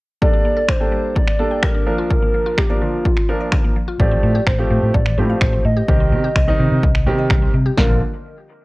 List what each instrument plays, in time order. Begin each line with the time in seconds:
0.21 grand piano G3 A#3 D4 A4, synth pluck G3, soft synth lead D5, kick
0.33 synth pluck D4
0.45 synth pluck A#3
0.57 synth pluck A4
0.68 synth pluck D4, soft synth lead C5, finger snap, kick
0.80 grand piano G3 A#3 D4 A4, synth pluck G5
0.92 synth pluck G3
1.16 synth pluck A#3, soft synth lead D5, kick
1.28 finger snap
1.39 grand piano G3 A#3 D4 A4, synth pluck D4
1.51 synth pluck G5
1.63 synth pluck G3, soft synth lead A#4, finger snap, kick
1.75 synth pluck D4
1.87 grand piano F3 A#3 D4 A#4, synth pluck F3
1.98 synth pluck F4
2.10 synth pluck D3, soft synth lead A#4, kick
2.22 synth pluck A#3
2.34 synth pluck F3
2.46 synth pluck F4
2.58 synth pluck A#3, soft synth lead G4, finger snap, kick
2.69 grand piano F3 A#3 D4 A#4, synth pluck D5
2.82 synth pluck D3, soft synth lead F4
3.05 synth pluck F3, kick
3.17 finger snap
3.29 grand piano F3 A#3 D4 A#4, synth pluck A#3
3.41 synth pluck D5
3.52 synth pluck D3, finger snap, kick
3.64 synth pluck A#3
3.76 synth pluck F3
3.88 synth pluck F4
3.99 fingered electric bass A1, grand piano F3 A3 C4 G4, synth pluck F3, soft synth lead D5, kick
4.11 synth pluck C4
4.23 fingered electric bass A2, synth pluck A3
4.35 synth pluck G4
4.47 fingered electric bass A1, synth pluck C4, soft synth lead C5, finger snap, kick
4.59 grand piano F3 A3 C4 G4, synth pluck F5
4.70 fingered electric bass A2, synth pluck F3
4.82 fingered electric bass A2
4.94 fingered electric bass A1, synth pluck A3, soft synth lead D5, kick
5.06 finger snap
5.18 fingered electric bass A2, grand piano F3 A3 C4 G4, synth pluck C4, soft synth lead C5
5.29 synth pluck F5
5.41 fingered electric bass A1, synth pluck F3, finger snap, kick
5.53 synth pluck C4
5.65 fingered electric bass A2, synth pluck A3, soft synth lead D#5
5.77 synth pluck G4
5.88 fingered electric bass C2, grand piano D#3 G3 C4 G4, synth pluck D#3, kick
6.00 synth pluck C4
6.12 fingered electric bass C3, synth pluck G3
6.24 synth pluck G4
6.36 fingered electric bass C2, synth pluck C4, finger snap, kick
6.47 grand piano D#3 G3 C4 D#4, synth pluck D#5
6.59 fingered electric bass C3, synth pluck D#3
6.71 fingered electric bass C3
6.83 fingered electric bass C2, synth pluck G3, kick
6.95 finger snap
7.06 fingered electric bass C3, grand piano D#3 G3 C4 G4, synth pluck C4
7.18 synth pluck D#5
7.30 fingered electric bass C2, synth pluck D#3, finger snap, kick
7.42 synth pluck C4
7.54 fingered electric bass C3, synth pluck G3
7.66 synth pluck G4
7.77 fingered electric bass A#1, grand piano D3 F3 A#3 F4, synth pluck F3 A#3 D4 A#4, soft synth lead A#4, kick, snare